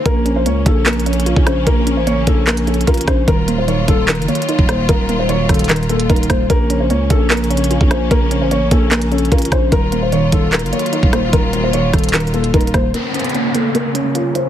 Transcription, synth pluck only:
X:1
M:4/4
L:1/8
Q:1/4=149
K:Bbm
V:1 name="Synth pluck"
B, D B, B, B, D F D | B, D B, B, B, D F D | E, B, E, E, E, B, E B, | E, B, E, E, E, B, E B, |
B, D B, B, B, D F D | B, D B, B, B, D F D | E, B, E, E, E, B, E B, | E, B, E, E, E, B, E B, |
B, D B, B, B, D F D |]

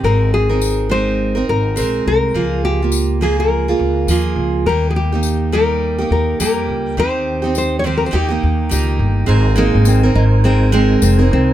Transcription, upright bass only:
X:1
M:4/4
L:1/16
Q:"Swing 16ths" 1/4=104
K:Ab
V:1 name="Upright bass" clef=bass
A,,,8- A,,,2 A,,,2 B,,,2 C,,2 | D,,8- D,,2 D,,2 E,,2 D,,2 | E,,8- E,,2 E,,2 F,,2 D,,2 | E,,8 E,,2 E,,2 D,,2 G,,,2 |
A,,,3 A,,,3 A,,,6 F,,,2 C,,2 |]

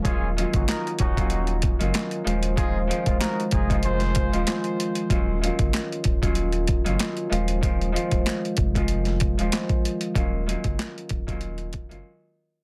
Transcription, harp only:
X:1
M:4/4
L:1/16
Q:"Swing 16ths" 1/4=95
K:Ebdor
V:1 name="Harp"
[E,G,B,DF]2 [E,G,B,DF]4 z [E,G,B,DF]4 [E,G,B,DF]3 [E,F,A,CF]2 | [E,F,A,CF]2 [E,F,A,CF]4 z [E,F,A,CF]3 z [E,F,A,CF]4 z | [E,G,B,DF]2 [E,G,B,DF]4 z [E,G,B,DF]4 [E,G,B,DF]3 [E,F,A,CF]2 | [E,F,A,CF]2 [E,F,A,CF]4 z [E,F,A,CF]3 z [E,F,A,CF]4 z |
[E,G,B,DF]2 [E,G,B,DF]4 z [E,G,B,DF]4 [E,G,B,DF] z4 |]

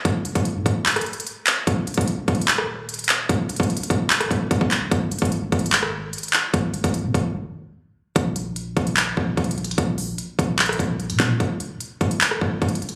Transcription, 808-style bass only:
X:1
M:4/4
L:1/16
Q:1/4=148
K:Ebdor
V:1 name="808-style bass" clef=bass
F,,,3 F,,,2 =A,, F,,,2 z8 | E,,,3 E,,,3 E,,,8- E,,,2 | E,,,3 E,,,2 F,,, E,,,4 E,,,2 E,,,4 | A,,,2 G,,, A,,,3 A,,,6 z4 |
A,,,3 A,,,2 C, A,,,2 z8 | B,,,6 B,,,4 B,,,2 B,,,4 | B,,,4 z2 B,,,4 B,,,3 B,, B,,2 | F,,,2 E,,, F,,, z2 F,,,2 z2 F,,,2 F,,,2 z2 |]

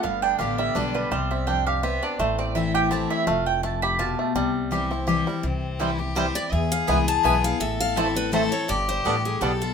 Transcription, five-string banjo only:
X:1
M:3/4
L:1/8
Q:"Swing" 1/4=166
K:C
V:1 name="Five-string banjo"
B, D G G, D G, | G, C D G C D | A, C E G C E | A,2 A, G F A, |
G,2 G C G G, | z2 [G,CE] z [G,CE] z | z2 [^G,B,E] z [G,B,E] z | z2 [A,CE] z [A,CE] z |
z2 [G,B,D] z [G,B,D] z |]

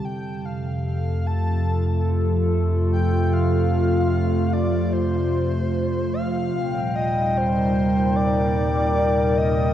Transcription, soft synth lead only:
X:1
M:4/4
L:1/8
Q:1/4=74
K:Flyd
V:1 name="Soft synth lead"
g f f a2 z2 g | f3 d c3 f- | f _e c2 d3 e |]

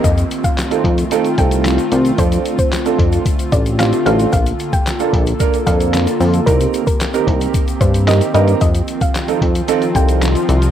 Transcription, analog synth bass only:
X:1
M:4/4
L:1/8
Q:1/4=112
K:Fmix
V:1 name="Analog synth bass" clef=bass
F,, z2 F,, z C,,2 C,, | F,, z2 F,, z A,,,2 A,,, | B,,, z2 B,,, z F,,2 F,, | C,, z2 C,, z G,,2 G,, |
F,, z2 F,, z C,,2 C,, |]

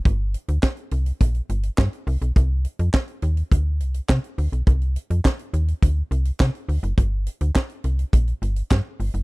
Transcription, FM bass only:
X:1
M:4/4
L:1/16
Q:1/4=104
K:Cdor
V:1 name="FM bass" clef=bass
G,,,3 D,, z2 C,,2 B,,,2 G,,,2 G,, z C,, =B,,, | C,,3 F,, z2 E,,2 D,,2 C,,2 C, z D,, =B,,, | C,,3 F,, z2 E,,2 D,,2 C,,2 C, z D,, ^F,,, | G,,,3 D,, z2 C,,2 B,,,2 G,,,2 G,, z G,,, ^F,,, |]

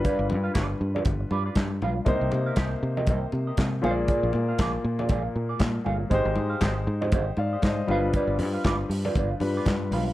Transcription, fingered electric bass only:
X:1
M:4/4
L:1/16
Q:"Swing 16ths" 1/4=118
K:Gphr
V:1 name="Fingered electric bass" clef=bass
z G,,, G,,2 G,,,2 G,,2 G,,,2 G,,2 G,,2 =B,,,2 | C,, C,, C,2 C,,2 C,2 C,,2 C,2 C,2 B,,,2- | B,,, B,,, B,,2 B,,,2 B,,2 B,,,2 B,,2 B,,2 G,,,2 | A,,, A,,, A,,2 A,,,2 A,,2 A,,,2 A,,2 A,,2 G,,,2- |
G,,, G,,, G,,2 G,,,2 G,,2 G,,,2 G,,2 G,,2 =B,,,2 |]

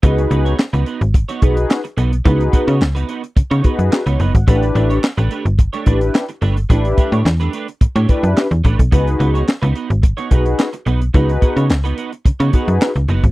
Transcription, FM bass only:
X:1
M:4/4
L:1/16
Q:1/4=108
K:C#m
V:1 name="FM bass" clef=bass
C,,2 C,,2 z C,, z G,,,2 z B,,,2 z2 B,,,2 | C,,2 z C, C,,2 z2 C, C, z F,, z C,, F,,, G,,, | A,,,2 A,,,2 z A,,, z =G,,,2 z A,,,2 z2 G,,,2 | A,,,2 z A,, E,,2 z2 A,, A,, z F,, z E,, A,,, B,,, |
C,,2 C,,2 z C,, z G,,,2 z B,,,2 z2 B,,,2 | C,,2 z C, C,,2 z2 C, C, z F,, z C,, F,,, G,,, |]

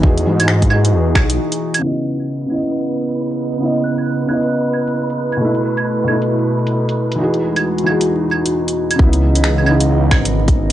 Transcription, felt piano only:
X:1
M:4/4
L:1/8
Q:"Swing 16ths" 1/4=134
K:C#m
V:1 name="Felt piano"
[E,DFG]3 [E,DFG]4- [E,DFG] | [C,B,Ed]3 [C,B,Ed]4- [C,B,Ed] | [C,B,Ed]3 [C,B,Ed]4- [C,B,Ed] | [B,,A,E]3 [B,,A,E]4- [B,,A,E] |
[E,DFG]3 [E,DFG]4- [E,DFG] | [C,B,DE]3 [C,B,DE]4- [C,B,DE] |]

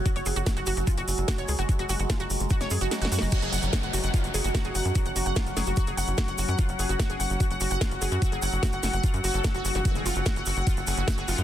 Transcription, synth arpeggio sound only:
X:1
M:4/4
L:1/16
Q:1/4=147
K:F#m
V:1 name="Synth arpeggio sound"
F c G F F F F F ^E F z2 F c G F | F F F F ^E F z2 F c G F F F F F | F G f z F f F f ^E z G F F G f z | F f F f ^E z G F F G f z F f F f |
^E z G F F G f z F f F f E z G F | F G f z F f F f ^E z F A A F F F | F G ^E z F f F f E z G F F G E z |]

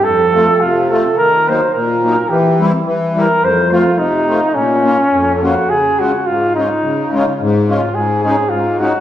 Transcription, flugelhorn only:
X:1
M:2/4
L:1/16
Q:1/4=107
K:Bbm
V:1 name="Flugelhorn"
=A4 F2 A2 | B2 c2 B4 | =G2 z4 B2 | c2 F2 E4 |
D4- D3/2 =A/2 G2 | [K:Db] A2 G2 F2 E2- | E4 z2 F2 | A2 A2 F2 G2 |]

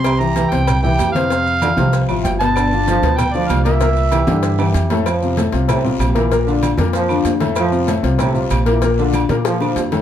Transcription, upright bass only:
X:1
M:4/4
L:1/8
Q:1/4=192
K:F
V:1 name="Upright bass" clef=bass
C,,3 C,,3 F,,2- | F,,3 C,,2 A,,, G,,,2- | G,,,3 D,,3 C,,2- | C,,3 G,,3 F,,2- |
F,,3 C,,3 B,,,2- | B,,,3 F,,3 F,,2- | F,,3 C,,3 B,,,2- | B,,,3 B,,3 F,,2 |]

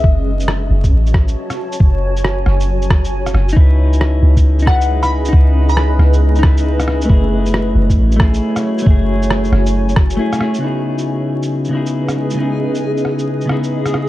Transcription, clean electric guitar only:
X:1
M:4/4
L:1/8
Q:"Swing 16ths" 1/4=136
K:C#m
V:1 name="Clean electric guitar"
z8 | z8 | [DEB]4- [DEB] [DEB]3 | [DEB]4- [DEB] [DEB]3 |
[A,EG]4- [A,EG] [A,EG]3 | [A,EG]4- [A,EG] z [A,EG] [A,EG] | [C,B,DEG]4- [C,B,DEG] [C,B,DEG]3 | [C,B,DEG]4- [C,B,DEG] [C,B,DEG]3 |]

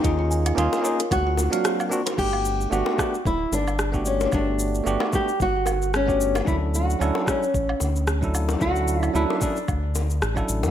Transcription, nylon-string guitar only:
X:1
M:4/4
L:1/16
Q:"Swing 16ths" 1/4=112
K:Ddor
V:1 name="Nylon-string guitar"
_E4 F4 ^F6 z2 | [K:Glyd] G4 F4 E2 D4 C2 | D6 G2 F4 C3 z | E2 F4 C8 z2 |
F4 E2 D8 z2 |]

